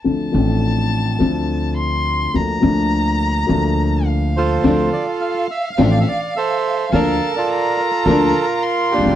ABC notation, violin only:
X:1
M:4/4
L:1/8
Q:1/4=105
K:Dm
V:1 name="Violin"
a6 c'2 | b6 f2 | f8 | a2 b4 c'2 |]